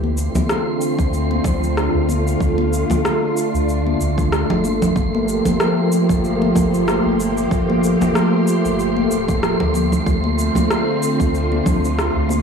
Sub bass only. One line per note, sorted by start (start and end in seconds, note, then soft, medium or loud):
0.00 0.29 D2 medium
0.35 0.46 D2 medium
0.99 1.40 D2 medium
1.45 1.88 D2 medium
1.94 2.36 D2 loud
2.41 2.84 D2 medium
2.90 3.01 D2 medium
3.54 3.95 D2 medium
4.00 4.44 D2 medium
4.50 4.91 G1 loud
4.96 5.39 G1 medium
5.46 5.57 G1 medium
6.10 6.51 G1 medium
6.56 6.99 G1 medium
7.05 7.46 G1 loud
7.51 7.95 G1 medium
8.01 8.12 G1 medium
8.65 9.06 G1 medium
9.11 9.54 D1 medium
9.61 10.02 D2 medium
10.07 10.50 D2 medium
10.56 10.67 D2 medium
11.20 11.61 D2 medium
11.66 12.10 D2 medium
12.16 12.42 D2 loud